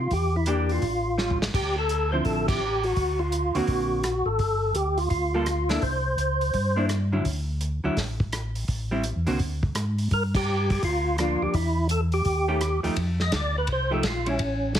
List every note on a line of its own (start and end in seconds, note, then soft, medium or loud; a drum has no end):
0.00 0.14 F4 medium
0.11 0.79 E2 medium
0.11 0.36 G4 medium
0.11 kick soft
0.11 open hi-hat soft
0.36 0.48 E4 medium
0.46 0.82 E3 medium
0.46 0.83 A#3 medium
0.46 0.83 D4 medium
0.46 0.83 G4 medium
0.46 0.72 G4 medium
0.46 closed hi-hat soft
0.69 1.39 F4 medium
0.69 open hi-hat soft
0.82 1.50 A1 medium
0.82 kick soft
0.82 open hi-hat soft
1.18 1.39 G3 medium
1.18 1.39 C#4 medium
1.18 1.39 F4 medium
1.18 snare soft
1.30 floor tom medium
1.42 snare medium
1.54 2.22 D2 medium
1.54 1.76 G4 medium
1.54 kick medium
1.54 crash medium
1.78 2.11 A4 medium
1.89 closed hi-hat medium
2.12 2.59 D3 medium
2.12 2.59 F3 medium
2.12 2.59 C4 medium
2.12 2.59 E4 medium
2.12 2.24 C5 medium
2.25 2.93 A1 medium
2.25 2.47 A4 medium
2.25 kick soft
2.25 open hi-hat soft
2.48 2.85 G4 medium
2.48 kick medium
2.48 crash medium
2.84 3.21 F#4 loud
2.84 open hi-hat soft
2.96 3.51 D2 medium
2.96 kick soft
2.96 open hi-hat soft
3.19 3.56 F4 medium
3.32 closed hi-hat medium
3.55 3.61 D2 soft
3.55 4.01 D3 medium
3.55 4.01 A#3 medium
3.55 4.02 C4 medium
3.55 4.29 F#4 medium
3.55 4.02 F#4 medium
3.55 open hi-hat soft
3.67 4.23 A#1 medium
3.67 kick soft
3.67 open hi-hat soft
4.03 cross-stick medium
4.03 closed hi-hat medium
4.25 4.38 G#1 medium
4.25 4.76 A4 loud
4.39 4.72 G1 medium
4.39 kick soft
4.39 open hi-hat soft
4.74 5.08 D2 medium
4.74 4.99 G4 medium
4.74 closed hi-hat medium
4.97 5.09 F4 medium
4.97 open hi-hat soft
5.10 5.79 D2 medium
5.10 5.71 F4 medium
5.10 kick soft
5.10 open hi-hat soft
5.34 5.46 G3 medium
5.34 5.46 A#3 medium
5.34 5.46 F4 medium
5.34 5.46 A4 medium
5.46 cross-stick medium
5.46 closed hi-hat medium
5.69 5.81 A#3 medium
5.69 5.81 D4 medium
5.69 5.82 E4 medium
5.69 5.83 A4 medium
5.69 snare soft
5.69 open hi-hat soft
5.82 6.15 C2 medium
5.82 6.86 C5 medium
5.82 kick soft
5.82 open hi-hat soft
6.17 6.51 C#2 medium
6.17 closed hi-hat soft
6.41 open hi-hat soft
6.53 7.22 G2 medium
6.53 kick soft
6.53 open hi-hat soft
6.76 6.88 A#3 medium
6.76 6.88 D4 medium
6.76 6.89 E4 medium
6.89 cross-stick medium
6.89 closed hi-hat medium
7.12 7.24 D3 medium
7.12 7.24 F#3 medium
7.12 7.24 C#4 medium
7.12 7.24 E4 medium
7.25 7.80 D2 medium
7.25 kick soft
7.25 open hi-hat soft
7.61 closed hi-hat medium
7.84 7.90 D2 soft
7.84 7.95 D3 medium
7.84 7.96 F#3 medium
7.84 7.96 C#4 medium
7.84 7.96 E4 medium
7.97 8.65 A1 medium
7.97 kick soft
7.97 snare soft
7.97 open hi-hat soft
8.20 kick medium
8.32 cross-stick medium
8.32 closed hi-hat medium
8.55 open hi-hat soft
8.68 9.12 A1 medium
8.68 kick soft
8.68 open hi-hat soft
8.91 9.03 G3 medium
8.91 9.03 C4 medium
8.91 9.03 E4 medium
9.04 closed hi-hat medium
9.16 9.27 E2 medium
9.26 9.39 C2 medium
9.26 9.38 D3 medium
9.26 9.38 A#3 medium
9.26 9.39 C4 medium
9.26 9.38 F#4 medium
9.26 open hi-hat soft
9.39 9.73 D2 medium
9.39 kick soft
9.39 open hi-hat soft
9.63 kick medium
9.75 10.08 G#2 medium
9.75 cross-stick medium
9.75 closed hi-hat medium
9.98 open hi-hat soft
10.11 10.79 G2 medium
10.11 10.23 A#4 loud
10.11 kick soft
10.11 open hi-hat soft
10.35 10.71 G4 loud
10.35 kick medium
10.35 crash medium
10.70 10.83 G4 medium
10.70 kick medium
10.70 open hi-hat soft
10.82 11.37 D2 medium
10.82 11.17 F4 medium
10.82 kick soft
10.82 open hi-hat soft
11.18 11.54 F3 medium
11.18 11.54 A#3 medium
11.18 11.55 D4 medium
11.18 11.43 F4 medium
11.18 cross-stick medium
11.18 closed hi-hat medium
11.41 11.47 D2 soft
11.41 11.55 G4 medium
11.54 12.22 E2 medium
11.54 11.87 E4 medium
11.54 kick soft
11.54 open hi-hat soft
11.89 12.01 A4 medium
11.89 closed hi-hat medium
12.12 12.80 G4 medium
12.12 open hi-hat soft
12.25 12.80 D#2 medium
12.25 kick soft
12.25 open hi-hat soft
12.48 12.60 D#3 medium
12.48 12.60 A3 medium
12.48 12.60 C#4 medium
12.48 12.60 G4 medium
12.61 cross-stick medium
12.61 closed hi-hat medium
12.83 12.90 D#2 soft
12.83 12.95 F3 medium
12.83 12.95 A3 medium
12.83 12.95 D#4 medium
12.83 12.95 G4 medium
12.83 open hi-hat soft
12.96 13.31 F2 medium
12.96 kick soft
12.96 ride medium
13.20 13.33 D#5 medium
13.20 snare soft
13.32 13.67 D2 medium
13.32 kick soft
13.32 snare medium
13.32 hi-hat pedal medium
13.32 ride medium
13.36 13.57 D5 medium
13.58 13.69 B4 medium
13.67 14.02 C2 medium
13.67 kick soft
13.67 ride medium
13.72 13.93 C5 medium
13.91 14.02 F3 medium
13.91 14.03 A3 medium
13.91 14.03 D#4 medium
13.91 14.03 G4 medium
13.91 14.05 A4 medium
14.03 14.38 A#1 medium
14.03 kick soft
14.03 snare medium
14.03 hi-hat pedal soft
14.03 ride medium
14.08 14.28 F4 medium
14.26 14.38 G3 medium
14.26 14.38 C#4 medium
14.26 14.73 C#4 medium
14.26 14.39 E4 medium
14.26 ride soft
14.39 14.74 A1 medium
14.39 kick soft
14.39 ride medium
14.75 14.80 B1 medium
14.75 kick soft
14.75 snare medium
14.75 hi-hat pedal medium
14.75 ride medium